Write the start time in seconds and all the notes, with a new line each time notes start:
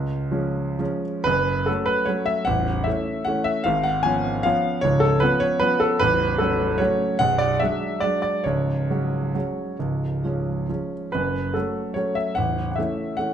Already playing: C#2 F#4 C#5
0.31 F3 G#3 C#4
0.79 F3 G#3 C#4
1.24 F#1 F#2 B4
1.66 F#3 A3 C#4 A4
1.86 B4
2.06 F#3 A3 C#4 C#5
2.26 E5
2.45 A0 A1 F#5
2.84 E3 A3 C#4 E5
3.25 E3 A3 C#4 F#5
3.44 E5
3.64 G#1 G#2 F5
3.83 F#5
4.03 F3 B3 C#4 G#5
4.43 F3 B3 C#4 F5
4.81 C#1 C#2 C#5
5.00 A4
5.20 F3 B3 C#4 B4
5.40 C#5
5.60 F3 B3 C#4 B4
5.80 A4
6.00 A0 A1 B4
6.38 F#3 A3 C#4 A4
6.78 F#3 A3 C#4 C#5
7.19 B0 B1 F#5
7.38 D5
7.60 F#3 G#3 D4 E5
8.00 F#3 G#3 D4 D5
8.22 D5
8.44 C#1 C#2 C#5
8.90 F#3 G#3 C#4
9.35 F#3 G#3 C#4
9.79 C#1 C#2
10.24 F3 G#3 C#4
10.69 F3 G#3 C#4
11.12 F#1 F#2 B4
11.54 F#3 A3 C#4 A4
11.94 F#3 A3 C#4 C#5
12.15 E5
12.35 A0 A1 F#5
12.71 F#5
12.76 E3 A3 C#4 E5
13.17 E3 A3 C#4 F#5